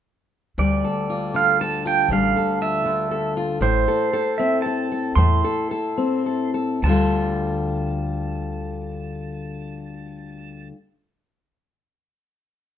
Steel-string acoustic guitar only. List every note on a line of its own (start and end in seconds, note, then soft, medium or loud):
0.58 2.09 D2 medium
0.58 2.10 G3 soft
0.84 1.61 A4 medium
1.10 1.84 F4 medium
1.34 2.84 D3 medium
1.61 2.14 A4 medium
1.85 2.07 F4 medium
2.10 3.62 D2 medium
2.10 3.63 G3 medium
2.36 3.11 A4 medium
2.61 3.36 F4 medium
2.86 3.62 D3 medium
3.11 3.88 A4 medium
3.37 3.59 F4 medium
3.61 5.16 A2 medium
3.61 5.18 E4 medium
3.88 4.13 A4 medium
4.13 4.66 A4 medium
4.39 5.14 C4 medium
4.66 4.91 A4 medium
4.92 5.44 A4 medium
5.17 6.83 A2 medium
5.17 6.80 E4 medium
5.44 5.70 A4 medium
5.71 6.25 A4 medium
5.97 6.79 C4 medium
6.26 6.53 A4 medium
6.54 6.79 A4 medium
6.83 10.70 D2 medium
6.83 10.72 D3 medium
6.83 10.74 G3 medium
6.89 10.76 F4 medium
6.89 10.78 A4 soft